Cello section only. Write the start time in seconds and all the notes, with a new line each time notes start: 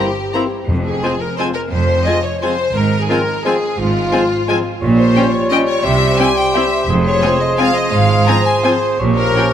0.67 F2
1.72 F2
2.75 G#2
3.78 G#2
4.81 A#2
5.84 C3
6.88 F2
7.92 G#2
8.99 A#2